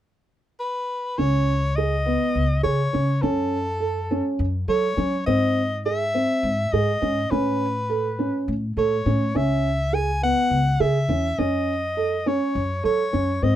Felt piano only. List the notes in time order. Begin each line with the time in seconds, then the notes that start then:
1.18 C#4
1.78 G#4
2.06 B3
2.63 G#4
2.93 C#4
3.22 C#4
3.80 A4
4.11 C#4
4.68 A4
4.97 C#4
5.27 C4
5.86 G#4
6.14 C4
6.74 G#4
7.02 C#4
7.31 C#4
7.90 A4
8.19 C#4
8.77 A4
9.06 C#4
9.35 C#4
9.93 G#4
10.22 B3
10.80 G#4
11.09 C#4
11.39 C#4
11.97 A4
12.26 C#4
12.84 A4
13.13 C#4
13.43 C4